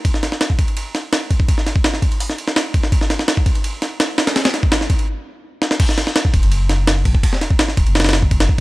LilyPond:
<<
  \new Staff \with { instrumentName = "Sub bass" } { \clef bass \time 4/4 \key ges \major \tempo 4 = 167 r1 | r1 | r1 | r1 |
r4. ees,,16 ges,,4.~ ges,,16 bes,,16 r16 | r4. ees,,16 ges,,4.~ ges,,16 r8 | }
  \new DrumStaff \with { instrumentName = "Drums" } \drummode { \time 4/4 <bd cymr>16 sn16 <cymr sn>16 sn16 <cymr sn>16 bd16 <bd cymr>16 cymr16 cymr8 <cymr sn>8 <cymr sn>8 <bd cymr>16 bd16 | <bd cymr>16 sn16 <cymr sn>16 bd16 <cymr sn>16 sn16 <bd cymr>16 cymr16 hho16 sn16 cymr16 sn16 <cymr sn>8 <bd cymr>16 sn16 | <bd cymr>16 sn16 <cymr sn>16 sn16 <cymr sn>16 bd16 <bd cymr>16 cymr16 cymr8 <cymr sn>8 <cymr sn>8 <cymr sn>16 <cymr sn>16 | <cymr sn>16 <cymr sn>16 <cymr sn>16 bd16 <cymr sn>16 sn16 <bd cymr>16 cymr16 r4 r8 sn16 sn16 |
<cymc bd cymr>16 sn16 <cymr sn>16 sn16 <cymr sn>16 bd16 <bd cymr>16 cymr16 cymr8 <cymr sn>8 <cymr sn>8 <bd cymr>16 bd16 | <bd cymr>16 sn16 <cymr sn>16 bd16 <cymr sn>16 sn16 <bd cymr>16 cymr16 <cymr sn>32 <cymr sn>32 <cymr sn>32 <cymr sn>32 <cymr sn>16 bd16 <bd cymr>16 <cymr sn>16 bd8 | }
>>